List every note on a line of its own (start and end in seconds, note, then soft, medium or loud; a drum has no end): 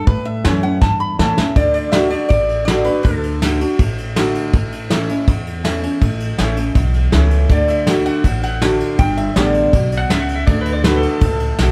0.07 0.43 A2 loud
0.07 0.78 A2 loud
0.07 0.25 B4 loud
0.07 kick loud
0.07 open hi-hat soft
0.25 0.62 E5 loud
0.44 0.81 F#2 medium
0.44 0.62 E3 medium
0.44 0.63 A3 loud
0.44 0.63 C#4 loud
0.44 0.62 E4 loud
0.44 snare loud
0.44 open hi-hat medium
0.63 0.82 C#4 soft
0.63 0.81 E4 medium
0.63 0.81 F#5 loud
0.81 1.53 E2 medium
0.81 1.18 G2 medium
0.81 1.00 A5 medium
0.81 kick loud
0.81 snare medium
1.00 1.18 B5 medium
1.19 1.36 A2 loud
1.19 1.37 E3 medium
1.19 1.37 A3 loud
1.19 1.37 C#4 loud
1.19 1.36 E4 medium
1.19 1.55 A5 loud
1.19 snare loud
1.37 1.56 C#4 medium
1.37 1.55 E4 medium
1.37 muted upright bass stroke soft
1.37 snare loud
1.56 2.13 D2 medium
1.56 1.92 D3 medium
1.56 1.73 D5 loud
1.56 kick loud
1.56 ride medium
1.74 1.92 D5 medium
1.74 ride medium
1.92 2.11 D3 medium
1.92 2.11 A3 medium
1.92 2.12 D4 loud
1.92 2.10 F#4 medium
1.92 2.10 E5 loud
1.92 snare loud
1.92 ride medium
2.10 2.30 D4 soft
2.10 2.29 F#4 medium
2.10 2.27 D5 medium
2.10 ride medium
2.29 2.87 A1 medium
2.29 3.01 A2 medium
2.29 2.64 D5 loud
2.29 kick loud
2.29 ride medium
2.49 ride medium
2.65 2.85 D3 medium
2.65 2.86 A3 medium
2.65 2.86 D4 medium
2.65 2.85 F#4 loud
2.65 2.85 D5 medium
2.65 snare loud
2.65 ride medium
2.85 3.05 D4 medium
2.85 3.04 F#4 medium
2.85 3.03 B4 medium
2.85 ride medium
3.03 3.62 D2 medium
3.03 3.41 D3 medium
3.03 3.38 A4 medium
3.03 kick loud
3.03 ride medium
3.23 ride medium
3.42 3.60 D3 loud
3.42 3.60 A3 medium
3.42 3.60 D4 medium
3.42 3.58 F#4 loud
3.42 snare loud
3.42 ride medium
3.60 3.79 D4 medium
3.60 3.78 F#4 medium
3.60 ride medium
3.79 4.36 A1 medium
3.79 4.50 A2 medium
3.79 kick loud
3.79 ride medium
3.98 ride medium
4.16 4.51 D3 medium
4.16 4.52 A3 loud
4.16 4.52 D4 medium
4.16 4.52 F#4 medium
4.16 snare loud
4.16 ride medium
4.35 ride medium
4.53 5.10 A1 medium
4.53 5.24 A2 medium
4.53 kick loud
4.53 ride medium
4.72 ride medium
4.90 5.08 E3 medium
4.90 5.08 A3 medium
4.90 5.09 C#4 loud
4.90 5.08 E4 loud
4.90 snare loud
4.90 ride medium
5.09 5.28 C#4 medium
5.09 5.27 E4 medium
5.09 ride medium
5.27 5.98 E2 medium
5.27 5.84 E2 medium
5.27 kick loud
5.27 ride medium
5.46 ride medium
5.63 5.82 E3 medium
5.63 5.82 A3 medium
5.63 5.83 C#4 medium
5.63 5.81 E4 loud
5.63 snare loud
5.63 ride medium
5.82 6.01 C#4 soft
5.82 6.01 E4 medium
5.82 ride medium
6.01 6.30 A1 medium
6.01 6.72 A2 medium
6.01 kick loud
6.01 ride medium
6.20 ride medium
6.38 6.71 A1 medium
6.38 6.56 E3 medium
6.38 6.57 A3 medium
6.38 6.57 C#4 loud
6.38 6.56 E4 loud
6.38 snare loud
6.38 ride medium
6.57 6.76 C#4 soft
6.57 6.75 E4 medium
6.57 ride medium
6.75 7.07 B1 medium
6.75 7.46 E2 medium
6.75 kick loud
6.75 ride medium
6.94 ride medium
7.12 7.45 C#2 medium
7.12 7.48 E3 medium
7.12 7.48 A3 medium
7.12 7.49 C#4 loud
7.12 7.49 E4 medium
7.12 snare loud
7.12 ride medium
7.31 ride medium
7.49 8.06 D2 medium
7.49 7.86 D3 medium
7.49 7.68 D5 medium
7.49 kick loud
7.49 ride medium
7.68 8.05 E5 medium
7.68 ride medium
7.87 8.23 D3 medium
7.87 8.23 A3 medium
7.87 8.23 D4 medium
7.87 8.23 F#4 medium
7.87 snare loud
7.87 ride medium
8.05 8.42 F#5 loud
8.05 ride medium
8.24 8.81 A1 medium
8.24 8.95 A2 medium
8.24 kick loud
8.24 ride medium
8.43 8.98 F#5 loud
8.43 ride medium
8.61 8.97 D3 medium
8.61 8.97 A3 medium
8.61 8.98 D4 medium
8.61 8.98 F#4 loud
8.61 snare loud
8.61 ride medium
8.80 ride medium
8.98 9.27 G1 loud
8.98 9.69 G2 medium
8.98 9.18 G5 loud
8.98 kick loud
8.98 ride medium
9.17 9.35 E5 loud
9.17 ride medium
9.36 9.68 A1 medium
9.36 9.71 D3 loud
9.36 9.72 G3 loud
9.36 9.72 B3 loud
9.36 9.72 G4 medium
9.36 9.96 D5 medium
9.36 snare loud
9.36 ride medium
9.54 ride medium
9.73 10.05 B1 medium
9.73 10.09 B2 medium
9.73 kick loud
9.73 ride medium
9.92 ride medium
9.96 10.25 C#5 medium
9.96 10.10 F#5 loud
10.10 10.42 C#2 medium
10.10 10.46 C#3 medium
10.10 10.22 E5 medium
10.10 snare loud
10.10 ride medium
10.22 10.34 F#5 medium
10.29 ride medium
10.35 10.46 E5 medium
10.47 11.04 D2 loud
10.47 10.84 D3 medium
10.47 10.59 D5 medium
10.47 kick loud
10.47 ride medium
10.61 10.73 B4 medium
10.65 ride medium
10.73 10.84 D5 medium
10.84 11.20 D3 medium
10.84 11.21 A3 loud
10.84 11.21 D4 loud
10.84 11.21 F#4 loud
10.84 10.97 B4 medium
10.84 snare loud
10.84 ride medium
10.97 11.08 A4 medium
11.03 ride medium
11.09 11.72 A4 loud
11.21 11.53 C#2 medium
11.21 11.72 A2 medium
11.21 kick loud
11.21 ride medium
11.40 ride medium
11.59 11.72 B1 medium
11.59 11.72 D3 medium
11.59 11.72 A3 medium
11.59 11.72 D4 medium
11.59 11.72 F#4 medium
11.59 snare loud
11.59 ride medium